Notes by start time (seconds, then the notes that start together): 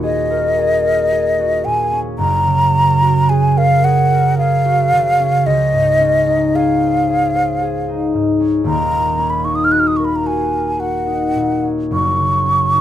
Already playing: D#1 D#2 A#2 C#4 F4 F#4
0.03 G#4 D#5
0.30 A#4
0.58 G#4
0.85 A#4
1.12 G#4
1.39 F#4
1.65 A#2 G#5
1.93 C#4
2.18 F#1 F#2 A#5
2.46 C#3
2.74 C#4
3.02 F#4
3.29 G#4 G#5
3.56 A#4 F5
3.84 G#4 F#5
4.12 A#4
4.38 G#4 F5
4.66 F#4
4.92 C#3
5.20 C#4
5.46 C#2 D#5
5.72 G#2
6.00 C#4
6.27 D#4
6.55 G#4 F5
6.82 C5
7.09 G#4
7.35 C5
7.61 G#4
7.88 D#4
8.14 G#2
8.40 C#4
8.64 D#1 D#2 A#5
8.91 A#2
9.18 C#4
9.30 B5
9.44 D#4 C#6
9.55 D#6
9.64 F6
9.72 F#4 F#6
9.80 F6
9.87 D#6
9.97 A#4 C#6
10.05 B5
10.16 A#5
10.25 F#4 G#5
10.52 A#4
10.79 F#4 F#5
11.06 D#4
11.36 A#2
11.63 C#4
11.90 F#1 F#2 C#6
12.18 C#3
12.45 C#4
12.73 D#4